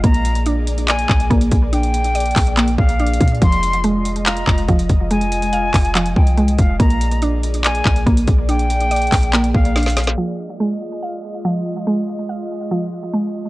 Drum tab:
HH |x-----x-----x-----x-----x-----------x-----x-----x-----x-----------x-----x-----x-----x-----------|x-----x-----x-----x-----x--x--x--x--o-----x-----x-----x-----------x-----x---x---x---x---x---x---|x-----x-----x-----x-----x-----------x-----x-----x-----x-----------x-----x-----x-----x-----------|x-----x-----x-----x-----x-----------o-----x-----x-----x-----------x-----x-----x-----x-----------|
CP |------------------------------------------------x-----------x-----------------------------------|------------------------------------x-----------x-----------------------------------------------|------------------------------------------------x-----------x-----------------------------------|------------------------------------x-----------x-----------------------------------------------|
SD |------------------------------------------------------------------------------------------------|------------------------------------------------------------------------------------------------|------------------------------------------------------------------------------------------------|------------------------------------------------------------------------------------------------|
BD |o-----------------------------------------------------------o-----------o-----------o-----------|------------------------------------o-----------------------o-----------------------o-----------|o-----------------------------------------------------------o-----------o-----------o-----------|------------------------------------o-----------------------o-----------------------o-----------|

HH |x-----x-----x-----x-----x-----------x-----x-----x-----x-----------x-----x-----x-----x-----------|x-----x-----x-----x-----x--x--x--x--o-----x-----x-----x-----------x-----x---x---x---x---x---x---|------------------------------------------------------------------------------------------------|------------------------------------------------------------------------------------------------|
CP |------------------------------------------------x-----------x-----------------------------------|------------------------------------x-----------x-----------------------------------------------|------------------------------------------------------------------------------------------------|------------------------------------------------------------------------------------------------|
SD |------------------------------------------------------------------------------------------------|------------------------------------------------------------------------o-----o-----o-----o-----|------------------------------------------------------------------------------------------------|------------------------------------------------------------------------------------------------|
BD |o-----------------------------------------------------------o-----------o-----------o-----------|------------------------------------o-----------------------o-----------------------------------|------------------------------------------------------------------------------------------------|------------------------------------------------------------------------------------------------|